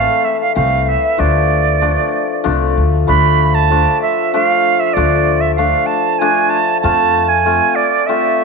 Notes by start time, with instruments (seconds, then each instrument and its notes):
Already playing: hammered dulcimer E3 A3 C4, flute F5
0.25 flute E5
0.41 flute F5
0.55 upright bass C2, hammered dulcimer E3 A3 C4, flute F5
0.89 flute E5
1.18 upright bass D2, hammered dulcimer F3 A3 D4, flute D5
1.81 hammered dulcimer F3 A3 D4
2.44 upright bass C2, hammered dulcimer F3 A3 D4
2.77 upright bass D2
3.07 upright bass D2, hammered dulcimer F3 A3 D4, flute B5
3.55 flute A5
3.70 hammered dulcimer F3 A3 D4
4.02 flute E5
4.32 hammered dulcimer F3 A3 D4, flute E5
4.43 flute F5
4.80 flute E5
4.94 upright bass D2, hammered dulcimer F3 A3 D4, flute D5
5.41 flute E5
5.56 hammered dulcimer F3 A3 D4, flute F5
5.86 flute A5
6.19 hammered dulcimer F3 A3 D4, flute G#5
6.50 flute A5
6.81 upright bass F2, hammered dulcimer A3 C4 F4, flute A5
7.29 flute G#5
7.45 hammered dulcimer A3 C4 F4
7.75 flute D5
8.07 hammered dulcimer A3 C4 F4, flute E5